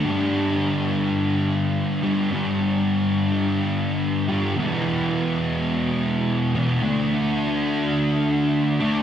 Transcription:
\new Staff \with { instrumentName = "Distorted electric guitar" } { \clef bass \time 4/4 \key g \major \tempo 4 = 106 <g, d g>2.~ <g, d g>8 <g, d g>8 | <g, d g>2.~ <g, d g>8 <g, d g>8 | <e, b, e>2.~ <e, b, e>8 <e, b, e>8 | <d a d'>2.~ <d a d'>8 <d a d'>8 | }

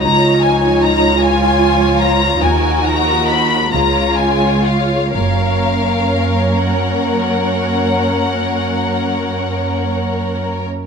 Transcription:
<<
  \new Staff \with { instrumentName = "Violin section" } { \time 12/8 \key fis \major \tempo 4. = 43 ais''8 gis''8 ais''8 gis''4 ais''8 gis''8 ais''8 b''8 ais''8 gis''8 eis''8 | eis''4. fis''1 r8 | }
  \new Staff \with { instrumentName = "Violin section" } { \time 12/8 \key fis \major <dis' cis''>4. <eis' cis''>4. <fis' ais'>4. <eis' cis''>4. | <ais' cis''>1~ <ais' cis''>4.~ <ais' cis''>16 r16 | }
  \new Staff \with { instrumentName = "Viola section" } { \time 12/8 \key fis \major << { eis'2. dis'4. eis'4. | cis'1~ cis'4.~ cis'16 r16 | } \\ { eis1~ eis8 gis4. | ais1~ ais4.~ ais16 r16 | } >> }
  \new Staff \with { instrumentName = "Cello section" } { \clef bass \time 12/8 \key fis \major cis,2. dis,4. cis,4. | fis,1~ fis,4.~ fis,16 r16 | }
  \new Staff \with { instrumentName = "Double bass section" } { \clef bass \time 12/8 \key fis \major cis,4 r2 dis,4 r8 cis,4 r8 | fis,,4 r1 r4 | }
>>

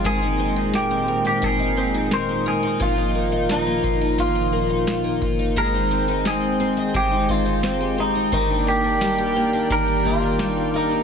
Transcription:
<<
  \new Staff \with { instrumentName = "Clean electric guitar" } { \time 4/4 \key aes \lydian \tempo 4 = 87 aes'4 g'8. g'16 aes'4 c''8 aes'8 | f'4 ees'4 f'4. r8 | bes'4 aes'4 g'8 f'4 ees'8 | ees'8 g'4. bes'8 f'4 ees'8 | }
  \new Staff \with { instrumentName = "Twelve-string acoustic guitar" } { \time 4/4 \key aes \lydian <aes bes'>16 ees'16 c'16 ees'16 bes'16 c'16 bes'16 ees'16 <aes bes'>16 ees'16 c'16 ees'16 bes'16 c'16 bes'16 ees'16 | <bes, f'>16 ees'16 bes16 ees'16 f'16 bes16 f'16 ees'16 <bes, f'>16 ees'16 bes16 ees'16 f'16 bes16 f'16 ees'16 | aes16 ees'16 c'16 ees'16 c'8 c'16 ees'16 aes16 ees'16 c'16 ees'16 c'16 g'16 c'16 ees'16 | ees16 d'16 bes16 d'16 g16 g'16 bes16 d'16 ees16 d'16 bes16 d'16 g16 g'16 bes16 d'16 | }
  \new Staff \with { instrumentName = "Analog synth pad" } { \time 4/4 \key aes \lydian << { <bes, c'>1 | bes,1 | <ees g''>1~ | <ees g''>1 | } \\ { <ees aes ees'>1 | <ees f f'>1 | <aes c' c''>1 | <bes bes' d''>1 | } >> }
  \new DrumStaff \with { instrumentName = "Drums" } \drummode { \time 4/4 <hh bd>4 <hh sn>4 <hh bd>4 <hh sn>4 | <hh bd>4 <hh sn tamb>8 bd8 <hh bd>4 <hh sn tamb>8 bd8 | <cymc hh bd>4 <hh sn tamb>4 <hh bd>8 bd8 <hh sn tamb>4 | <hh bd>4 <hh sn tamb>4 <hh bd>8 bd8 <hh sn tamb>4 | }
>>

